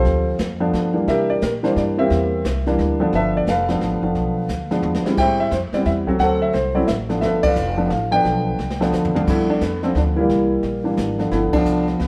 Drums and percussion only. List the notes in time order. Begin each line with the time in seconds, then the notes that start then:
0.05 brush sweep, snare
0.39 kick, snare, hi-hat pedal
0.73 kick, snare
1.08 brush sweep, kick, snare
1.42 kick, snare, hi-hat pedal
1.64 snare
1.76 kick, snare
2.11 brush sweep, kick, snare
2.45 kick, snare, hi-hat pedal
2.67 snare
2.79 kick, snare
3.13 brush sweep, kick, snare
3.47 kick, snare, hi-hat pedal
3.68 snare
3.81 kick, snare
4.15 brush sweep, kick, snare
4.49 kick, snare, hi-hat pedal
4.71 snare
4.83 mid tom
4.94 snare
5.06 snare
5.17 brush sweep, kick, snare, crash
5.51 kick, snare, hi-hat pedal
5.73 snare
5.86 kick, snare
6.07 kick
6.19 brush sweep, kick, snare
6.54 kick, snare
6.87 kick, snare, hi-hat pedal
7.10 snare
7.22 brush sweep, kick, snare
7.43 kick, ride
7.56 hi-hat pedal
7.91 kick, snare
8.25 brush sweep, kick, snare
8.59 snare
8.70 snare
8.82 snare
8.93 snare, hi-hat pedal
9.05 floor tom
9.16 floor tom
9.27 brush sweep, kick, snare, crash
9.61 kick, snare, hi-hat pedal
9.83 snare
9.95 kick, snare
10.29 brush sweep, kick, snare
10.63 kick, snare
10.97 kick, snare, hi-hat pedal
11.19 snare
11.31 brush sweep, kick, snare
11.53 kick, ride
11.66 hi-hat pedal
11.88 snare
12.00 kick, snare